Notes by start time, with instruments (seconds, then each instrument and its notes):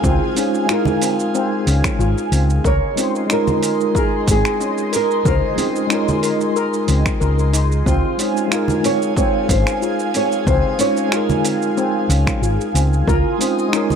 Already playing: tine electric piano G#3 D#4 F4 A#4, analog synth pad G#4 F5 G#5
0.03 fingered electric bass C#2, steel pan C4, nylon-string guitar F4, kick, shaker
0.35 tine electric piano G#3 C#4 D#4 F4 C5, steel pan C#4, open hi-hat, shaker
0.54 shaker
0.66 tine electric piano G#3 D#4, steel pan F4, finger snap, shaker
0.70 nylon-string guitar F4, tine electric piano F4 A#4
0.85 low conga, shaker
1.02 steel pan C4, open hi-hat, shaker
1.20 shaker
1.35 steel pan C4, shaker
1.67 fingered electric bass C#2, steel pan C#4, open hi-hat, shaker
1.84 finger snap, kick, shaker
1.99 fingered electric bass G#1, steel pan F4, shaker
2.18 shaker
2.32 fingered electric bass C#2, steel pan C4, open hi-hat, shaker
2.50 shaker
2.64 fingered electric bass C#2, analog synth pad G#4 D#5 C6, steel pan A#4, nylon-string guitar C#5, kick, shaker
2.95 tine electric piano G#3 C#4 D#4 F4 C5, steel pan C4, open hi-hat, shaker
3.15 shaker
3.26 tine electric piano G#3 D#4, steel pan C#4, finger snap
3.30 tine electric piano F4 A#4, nylon-string guitar A#4, shaker
3.48 low conga, shaker
3.63 steel pan A#4, open hi-hat, shaker
3.80 shaker
3.95 nylon-string guitar G#4, steel pan A#4, kick, shaker
4.27 fingered electric bass G#1, steel pan C4, kick, open hi-hat, shaker
4.31 nylon-string guitar G#4
4.45 finger snap, shaker
4.60 steel pan C#4, shaker
4.78 shaker
4.92 steel pan A#4, nylon-string guitar A#4, open hi-hat, shaker
5.11 shaker
5.25 fingered electric bass C#2, steel pan A#4, nylon-string guitar C5, kick, low conga, shaker
5.56 tine electric piano G#3 C#4 D#4 F4, steel pan C4, open hi-hat, high conga, shaker
5.60 tine electric piano C5
5.76 shaker
5.87 tine electric piano G#3 D#4, steel pan C#4, finger snap
5.91 tine electric piano F4 A#4, shaker
6.08 low conga, shaker
6.23 steel pan A#4, open hi-hat, shaker
6.41 shaker
6.56 steel pan A#4, shaker
6.73 shaker
6.88 fingered electric bass C#2, steel pan C4, open hi-hat, shaker
7.06 finger snap, kick, shaker
7.20 fingered electric bass C#2, steel pan A#4, shaker
7.38 steel pan A#4, shaker
7.53 steel pan D#4, open hi-hat, shaker
7.72 shaker
7.86 fingered electric bass C#2, steel pan C4, nylon-string guitar F4, analog synth pad G#4 F5 G#5, kick, shaker
8.17 tine electric piano G#3 C#4 D#4 F4 C5, steel pan C#4, open hi-hat, shaker
8.37 shaker
8.47 tine electric piano G#3 D#4, steel pan F4
8.52 tine electric piano F4 A#4, finger snap, shaker
8.68 low conga, shaker
8.84 steel pan C4, nylon-string guitar C#5, open hi-hat, shaker
9.02 shaker
9.17 steel pan C4, nylon-string guitar C#5, kick, shaker
9.49 fingered electric bass G#1, steel pan C#4, nylon-string guitar C5, kick, open hi-hat, shaker
9.67 finger snap, shaker
9.82 steel pan F4, shaker
9.99 shaker
10.14 steel pan C4, nylon-string guitar C#5, open hi-hat, shaker
10.32 shaker
10.47 fingered electric bass C#2, steel pan C4, nylon-string guitar C5, kick, shaker
10.78 tine electric piano G#3 C#4 D#4 F4 C5, steel pan C#4, nylon-string guitar C#5, open hi-hat, shaker
10.97 shaker
11.09 tine electric piano G#3 D#4, steel pan F4, finger snap, shaker
11.14 tine electric piano F4 A#4
11.29 low conga, shaker
11.45 steel pan C4, open hi-hat, shaker
11.62 shaker
11.77 steel pan C4, shaker
12.09 fingered electric bass C#2, steel pan C#4, open hi-hat, shaker
12.27 finger snap, kick, shaker
12.42 fingered electric bass G#1, steel pan F4, shaker
12.61 shaker
12.74 fingered electric bass C#2, steel pan C4, open hi-hat, shaker
12.93 shaker
13.07 fingered electric bass C#2, nylon-string guitar F4, steel pan A#4, analog synth pad G#5 C6 D#6, kick, shaker
13.38 tine electric piano G#3 C#4 D#4 F4 C5, steel pan C4, open hi-hat, shaker
13.59 shaker
13.69 tine electric piano G#3 D#4
13.73 steel pan C#4, tine electric piano F4 A#4, finger snap, shaker
13.90 low conga, shaker